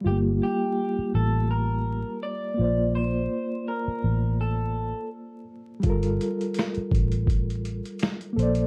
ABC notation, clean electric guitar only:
X:1
M:4/4
L:1/8
Q:"Swing 16ths" 1/4=83
K:Gm
V:1 name="Clean electric guitar"
G G2 A B2 d2 | c2 B2 A2 z2 | z8 |]